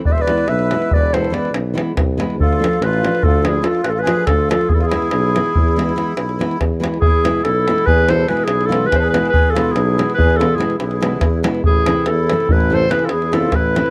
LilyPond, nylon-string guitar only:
\new Staff \with { instrumentName = "Nylon-string guitar" } { \time 11/8 \tempo 4 = 142 r8 <e gis b e'>8 r8 <e gis b e'>8 r8 <e gis b e'>8 <e gis b e'>8 r8 <e gis b e'>8 r8 <e gis b e'>8 | r8 <f a d' f'>8 r8 <f a d' f'>8 r8 <f a d' f'>8 <f a d' f'>8 r8 <f a d' f'>8 r8 <f a d' f'>8 | r8 <e gis b e'>8 r8 <e gis b e'>8 r8 <e gis b e'>8 <e gis b e'>8 r8 <e gis b e'>8 r8 <e gis b e'>8 | r8 <b, e gis b e'>8 r8 <b, e gis b e'>8 r8 <b, e gis b e'>8 <b, e gis b e'>8 r8 <b, e gis b e'>8 r8 <b, e gis b e'>8 |
r8 <b, e gis b e'>8 r8 <b, e gis b e'>8 r8 <b, e gis b e'>8 <b, e gis b e'>8 r8 <b, e gis b e'>8 r8 <b, e gis b e'>8 | r8 <c e a c' e'>8 r8 <c e a c' e'>8 r8 <c e a c' e'>8 <c e a c' e'>8 r8 <c e a c' e'>8 r8 <c e a c' e'>8 | }